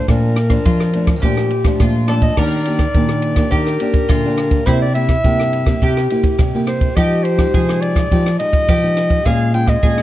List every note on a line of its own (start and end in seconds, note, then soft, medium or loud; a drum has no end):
0.00 0.72 A4 loud
0.08 0.63 A#2 medium
0.08 0.35 F3 medium
0.08 0.35 A3 medium
0.08 0.36 D4 medium
0.08 1.76 A#4 medium
0.08 kick medium
0.08 cross-stick medium
0.08 ride medium
0.36 cross-stick medium
0.36 ride soft
0.50 0.89 F3 medium
0.50 0.89 D4 medium
0.50 kick medium
0.50 cross-stick medium
0.50 ride soft
0.65 1.20 F2 medium
0.65 1.23 F3 loud
0.65 1.21 F4 medium
0.65 kick medium
0.65 ride soft
0.80 cross-stick medium
0.93 1.11 F3 medium
0.93 1.11 A3 medium
0.93 1.11 D4 medium
0.93 ride soft
1.07 kick medium
1.07 cross-stick medium
1.07 ride soft
1.22 1.77 A#2 medium
1.22 1.50 F3 medium
1.22 1.50 A3 medium
1.22 1.50 D4 medium
1.22 1.80 G4 medium
1.22 kick medium
1.22 ride soft
1.37 cross-stick medium
1.50 ride soft
1.64 2.04 F3 medium
1.64 2.04 A3 medium
1.64 2.04 D4 medium
1.64 kick medium
1.64 cross-stick medium
1.64 ride soft
1.80 2.35 F2 medium
1.80 2.29 A#2 medium
1.80 2.10 F4 medium
1.80 kick medium
1.80 cross-stick medium
1.80 ride soft
2.08 2.33 F3 medium
2.08 2.33 A3 medium
2.08 2.34 D4 medium
2.08 2.35 A4 medium
2.08 2.16 D5 medium
2.08 cross-stick medium
2.08 ride soft
2.22 2.36 D#5 medium
2.22 kick medium
2.22 ride soft
2.37 2.93 D#3 medium
2.37 2.62 A#3 medium
2.37 2.62 D4 medium
2.37 2.63 G4 medium
2.37 3.56 A#4 loud
2.37 3.53 D5 loud
2.37 kick medium
2.37 cross-stick medium
2.37 crash medium
2.65 2.83 A#3 medium
2.65 2.84 D4 medium
2.65 2.84 G4 soft
2.65 ride medium
2.79 kick medium
2.79 cross-stick medium
2.79 ride soft
2.94 3.50 A#2 medium
2.94 3.43 D#3 medium
2.94 3.34 A#3 medium
2.94 3.34 D4 medium
2.94 3.34 G4 medium
2.94 kick medium
2.94 ride soft
3.09 cross-stick medium
3.22 ride soft
3.36 3.76 A#3 medium
3.36 3.76 D4 medium
3.36 3.76 G4 medium
3.36 kick medium
3.36 cross-stick medium
3.36 ride medium
3.51 4.07 D#3 medium
3.51 4.08 G4 loud
3.51 4.68 A#4 medium
3.51 kick medium
3.51 ride soft
3.67 cross-stick medium
3.80 4.19 A#3 medium
3.80 4.20 D4 medium
3.80 4.20 G4 medium
3.80 ride soft
3.94 kick medium
3.94 ride soft
4.09 4.65 A#2 medium
4.09 4.58 D3 medium
4.09 4.66 F4 medium
4.09 kick medium
4.09 cross-stick medium
4.09 ride medium
4.25 4.63 A#3 medium
4.25 4.63 D4 medium
4.25 4.63 G4 medium
4.38 cross-stick medium
4.38 ride soft
4.51 kick medium
4.51 ride soft
4.66 5.22 C3 medium
4.66 4.84 A#3 medium
4.66 5.83 E4 medium
4.66 4.84 E4 medium
4.66 4.85 G4 medium
4.66 4.81 C5 loud
4.66 kick medium
4.66 cross-stick medium
4.66 ride soft
4.82 4.94 D5 medium
4.94 5.12 A#3 medium
4.94 5.13 E4 medium
4.94 5.13 G4 medium
4.94 6.06 E5 loud
4.94 ride soft
5.09 kick medium
5.09 cross-stick medium
5.09 ride soft
5.24 5.79 G2 medium
5.24 5.73 C3 medium
5.24 5.63 A#3 medium
5.24 5.63 E4 medium
5.24 5.63 G4 medium
5.24 kick medium
5.24 ride soft
5.40 cross-stick medium
5.53 ride soft
5.66 6.05 A#3 medium
5.66 6.06 E4 medium
5.66 6.06 G4 medium
5.66 kick medium
5.66 cross-stick medium
5.66 ride soft
5.82 6.37 C3 medium
5.82 6.95 G4 medium
5.82 kick medium
5.82 ride soft
5.97 cross-stick medium
6.10 6.38 A#3 medium
6.10 6.38 E4 medium
6.10 6.38 G4 medium
6.10 ride soft
6.24 kick medium
6.24 ride soft
6.39 6.94 G2 medium
6.39 6.88 C3 medium
6.39 kick loud
6.39 cross-stick medium
6.39 ride medium
6.54 6.92 A#3 medium
6.54 6.93 E4 medium
6.54 6.93 G4 medium
6.67 6.98 C5 medium
6.67 cross-stick medium
6.67 ride soft
6.81 kick medium
6.81 ride soft
6.96 7.51 F3 medium
6.96 7.24 G#3 medium
6.96 7.24 D#4 medium
6.96 7.54 G4 medium
6.96 7.24 G4 medium
6.96 7.25 D#5 medium
6.96 kick medium
6.96 cross-stick medium
6.96 ride soft
7.24 7.83 C5 medium
7.24 ride soft
7.38 7.63 G#3 medium
7.38 7.63 D#4 medium
7.38 7.63 G4 medium
7.38 kick medium
7.38 cross-stick medium
7.38 ride soft
7.54 8.08 C3 medium
7.54 8.03 F3 medium
7.54 8.68 G#4 medium
7.54 kick medium
7.54 ride soft
7.69 8.07 G#3 medium
7.69 8.07 D#4 medium
7.69 cross-stick medium
7.81 8.39 D5 loud
7.81 ride soft
7.96 kick medium
7.96 cross-stick medium
7.96 ride medium
8.11 8.66 F3 medium
8.11 8.28 G#3 medium
8.11 8.28 D#4 medium
8.11 8.29 G4 medium
8.11 kick medium
8.11 ride soft
8.26 cross-stick medium
8.39 8.78 G#3 medium
8.39 8.78 D#4 medium
8.39 8.79 G4 medium
8.39 9.27 D#5 loud
8.39 ride soft
8.53 kick medium
8.53 ride medium
8.68 9.23 C3 medium
8.68 9.17 F3 medium
8.68 9.25 G4 medium
8.68 kick loud
8.68 cross-stick medium
8.68 ride medium
8.83 9.21 G#3 medium
8.83 9.22 D#4 medium
8.83 9.22 G4 medium
8.97 cross-stick medium
8.97 ride medium
9.10 kick medium
9.10 ride soft
9.25 9.80 A#2 medium
9.25 9.50 G#3 medium
9.25 9.50 C#4 medium
9.25 9.50 F4 medium
9.25 9.81 G#4 medium
9.25 9.54 F5 loud
9.25 kick medium
9.25 cross-stick medium
9.25 ride medium
9.53 9.78 G#3 soft
9.53 9.78 C#4 medium
9.53 9.79 F4 medium
9.53 9.70 G5 loud
9.53 ride soft
9.67 10.02 D#5 medium
9.67 kick medium
9.67 cross-stick medium
9.67 ride soft
9.83 10.02 A#2 medium
9.83 10.02 F3 medium
9.83 10.02 G#3 medium
9.83 10.02 C#4 medium
9.83 10.02 F4 medium
9.83 10.02 G#4 medium
9.83 kick medium
9.83 ride soft
9.98 cross-stick medium